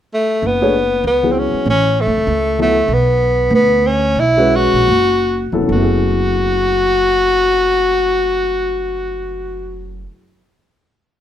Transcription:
0.14 A3
0.42 F#1 B3
0.62 A3 D4 G#4 C#5
1.04 C#2 B3
1.23 F#3 B3 E4 G#4
1.32 C4
1.38 C#4
1.53 muted upright bass stroke
1.66 A1
1.70 C#4
2.01 A3
2.07 G#1
2.17 F1
2.27 C#2
2.59 F#3 A3 B3 E4 A4
2.88 B1
2.93 B3
3.50 D2
3.55 B3
3.87 C#4
4.15 B1
4.20 E4
4.37 G#3 C#4 F#4 B4
4.56 F#4
4.73 A#1
4.88 F#1
5.52 F1 F#3 B3 E4 A4
5.58 F#2
5.62 F#3
5.68 F#1 A3
5.72 B3 F#4
5.77 E4
5.83 G#4

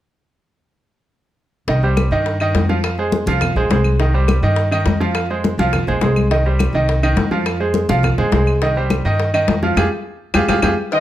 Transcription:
1.68 C2 D#3 D#4 D#5, high bongo, high conga
1.83 G3 G4 C5, high conga
1.97 high bongo, high conga, claves
2.11 G2 D#3 D#4 D#5, high conga
2.26 high bongo, high conga
2.40 D#3 D#4 D#5, high conga, claves
2.55 F2, high bongo, low bongo, high conga
2.69 F3 F4 F5, high conga
2.84 high bongo, high conga, claves
2.98 G#3 G#4 C5, high conga
3.12 high bongo, high conga
3.26 C2 F3 F4 F5, high bongo, high conga
3.41 high bongo, high conga, low conga, claves
3.56 A#1 G#3 G#4 C5, high bongo, high conga
3.70 C2 G#3 G#4 C5, high bongo, low bongo, high conga
3.84 high bongo, high conga, claves
4.00 D#3 D#4 D#5, high bongo, high conga
4.14 G3 G4 C5, high conga
4.28 high bongo, high conga, claves
4.42 G2 D#3 D#4 D#5, high conga
4.56 high bongo, high conga
4.71 D#3 D#4 D#5, high conga, claves
4.86 F2, high bongo, low bongo, high conga
5.00 F3 F4 F5, high conga
5.15 high bongo, claves
5.30 G#3 G#4 C5, high conga
5.44 high bongo, high conga
5.58 C2 F3 F4 F5, high bongo, high conga
5.73 high bongo, high conga, low conga, claves
5.87 A#1 G#3 G#4 C5, high bongo, high conga, low conga
6.01 C2 G#3 G#4 C5, high bongo, low bongo, high conga
6.16 high bongo, high conga, claves
6.31 D#3 D#4 D#5, high bongo
6.46 G3 G4 C5, high conga
6.59 high bongo, high conga, claves
6.73 C2 D#3 D#4 D#5, high conga
6.88 high bongo, high conga
7.03 D#3 D#4 D#5, high conga, claves
7.16 F2, high bongo, low bongo, high conga
7.31 F3 F4 F5, high conga
7.46 high bongo, high conga, claves
7.60 G#3 G#4 C5, high conga
7.74 high bongo, high conga
7.89 C2 F3 F4 F5, high bongo, high conga
8.03 high bongo, high conga, low conga, claves
8.18 A#1 G#3 G#4 C5, high bongo, high conga, low conga
8.32 C2 G#3 G#4 C5, high bongo, low bongo, high conga
8.46 high bongo, claves
8.62 D#3 D#4 D#5, high bongo, high conga
8.76 G3 G4 C5, high conga
8.90 high bongo, high conga, claves
9.05 G2 D#3 D#4 D#5, high conga
9.19 high bongo, high conga
9.34 D#3 D#4 D#5, high conga, claves
9.48 F2, high bongo, low bongo, high conga
9.63 F3 F4 F5, high conga
9.77 F2 F4 G4 G#4, low bongo, high conga, claves
10.34 F2 F4 G4 G#4, low bongo, high conga, claves
10.48 F2 F4 G4 G#4, low bongo, high conga, claves
10.62 F2 F4 G4 G#4, low bongo, high conga, claves
10.92 D#3 D#4 C5 D#5, cowbell, high conga

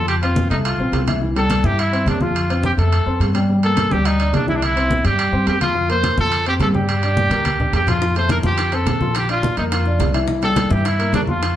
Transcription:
Already playing: F2 F3 F4
0.08 G4, high conga, high timbale
0.22 C4 F4 C5, high conga, high timbale
0.36 high conga, low timbale
0.50 C2 A3 D#4 A4, high conga, high timbale
0.65 F4, high conga, high timbale
0.78 A#1 C4 C5, high conga
0.92 C2, high conga, high timbale, low timbale
1.07 E3 E4, high conga, high timbale
1.21 E3 E4, high conga
1.36 G3 G4 A4, high conga, high timbale
1.50 high conga, high timbale, low timbale
1.63 G2 E3 E4 G4, high conga
1.78 E4, high conga, high timbale
1.92 C4 C5, high conga, high timbale
2.06 F2 D4, high conga, high timbale, low timbale
2.21 F3 F4, high conga
2.35 high conga, high timbale
2.49 C4 C5, high conga, high timbale
2.63 G4, high conga, low timbale
2.78 F2 A3 A4, high conga, high timbale
2.92 high conga, high timbale
3.06 F2 C4 C5, high conga
3.20 G2, high conga, high timbale, low timbale
3.35 G3 G4, high timbale
3.49 G3 G4, high conga
3.63 A#3 A4 A#4, high conga, high timbale
3.77 high conga, high timbale, low timbale
3.91 D2 G3 G4, high conga
4.05 D#4, high conga, high timbale
4.20 D4 D5, high conga, high timbale
4.33 C2 D4, high conga, high timbale, low timbale
4.48 E3 E4, high conga
4.55 D4
4.62 E4, high conga, high timbale
4.76 C4 C5, high conga, high timbale
4.91 high conga, low timbale
5.04 G2 G3 G4, high conga, high timbale
5.19 high conga, high timbale
5.32 G2 C4 C5, high conga
5.47 F2 G4, high conga, high timbale, low timbale
5.61 F3 F4, high conga, high timbale
5.75 F3 F4, high conga
5.89 A#3 A#4 C5, high conga, high timbale
6.04 high conga, high timbale, low timbale
6.17 F2 F3 F4 A4, high conga
6.32 high conga, high timbale
6.46 C4 G4 C5, high conga, high timbale
6.59 G2 A4, high conga, high timbale, low timbale
6.74 G3 G4, high conga
6.89 high conga, high timbale
7.03 D4 D5, high conga, high timbale
7.17 high conga, low timbale
7.30 D2 A#3 A#4, high conga, high timbale
7.45 high conga, high timbale
7.60 D4 D5, low conga
7.73 F2 G4, high timbale, low timbale
7.87 F3 F4, low conga, high timbale
8.01 F3 F4, high bongo, high conga
8.15 A3 A4 C5, high bongo, high conga, high timbale
8.29 A#4, high bongo, high conga, high timbale, low timbale
8.43 F2 F3 F4 G4, high bongo, high conga
8.58 high bongo, high conga, high timbale
8.72 C4 A4 C5, high bongo, high conga, high timbale
8.86 A#1, high bongo, low bongo, high conga, high timbale, low timbale
9.01 F3 F4, high conga
9.15 G4, high bongo, high conga, high timbale
9.29 D4 F4 D5, high bongo, high conga, high timbale
9.43 high bongo, high conga, low timbale
9.57 F2 A#3 D#4 A#4, high bongo, high conga, high timbale
9.72 F4, high bongo, high conga, high timbale
9.85 D4 D5, high bongo, high conga
9.99 C2, high bongo, low bongo, high conga, high timbale, low timbale
10.14 E3 E4, high timbale
10.28 E3 E4, high bongo, high conga
10.42 G3 G4 A4, high bongo, high conga, high timbale
10.56 high bongo, high conga, high timbale, low timbale
10.70 G2 E3 E4 G4, high bongo, high conga
10.85 E4, high bongo, high conga, high timbale
10.99 A#3 A#4, high bongo, high conga, high timbale
11.13 F2 D4, high bongo, low bongo, high conga, high timbale, low timbale
11.27 F3 F4, high conga
11.42 high bongo, high conga, high timbale

